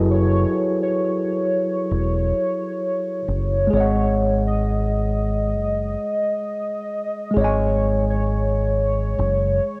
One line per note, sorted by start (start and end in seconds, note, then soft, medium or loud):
0.00 0.44 F#1 loud
0.00 3.21 F#3 medium
0.00 3.27 E4 medium
0.00 3.22 F#4 medium
0.00 3.23 G#4 medium
0.00 3.25 A4 medium
0.00 3.26 B4 medium
0.11 0.78 C#5 loud
0.82 3.69 C#5 loud
1.91 2.31 E1 medium
3.28 3.68 F#1 medium
3.67 7.30 G#3 medium
3.67 7.31 G#4 medium
3.73 5.56 G#1 loud
3.73 7.33 C#5 medium
3.73 4.42 C#5 loud
3.77 7.35 D#5 medium
3.77 7.36 F#5 medium
4.47 7.33 D#5 medium
5.56 5.95 F#1 medium
7.31 9.80 G#3 medium
7.31 9.80 G#4 medium
7.37 9.14 G#1 loud
7.37 8.05 C#5 loud
7.37 9.80 C#5 medium
7.41 9.80 D#5 medium
7.41 9.80 G#5 medium
8.10 9.80 C#5 loud
9.19 9.58 F#1 medium